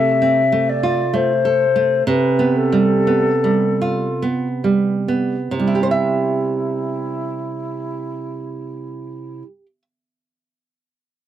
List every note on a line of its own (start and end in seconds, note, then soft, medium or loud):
0.00 2.02 C3 soft
0.00 0.40 A3 soft
0.00 0.11 A4 soft
0.00 0.70 E5 medium
0.22 0.71 C4 soft
0.52 1.01 A3 soft
0.69 1.17 D5 medium
0.83 1.32 F4 soft
1.13 1.63 A3 soft
1.13 2.06 C5 medium
1.45 1.94 A4 soft
1.76 2.07 A3 soft
2.07 5.49 C3 soft
2.07 2.58 B4 medium
2.39 2.93 B3 soft
2.56 4.22 A4 medium
2.72 3.29 G3 soft
3.07 3.66 B3 soft
3.44 4.06 G3 soft
3.82 4.47 F4 soft
4.22 4.92 B3 soft
4.64 5.35 G3 soft
5.08 5.52 B3 soft
5.51 9.42 C3 soft
5.51 9.43 E4 soft
5.59 9.50 G3 soft
5.67 5.83 E4 soft
5.75 9.66 G4 soft
5.83 5.91 C5 soft
5.91 9.82 E5 soft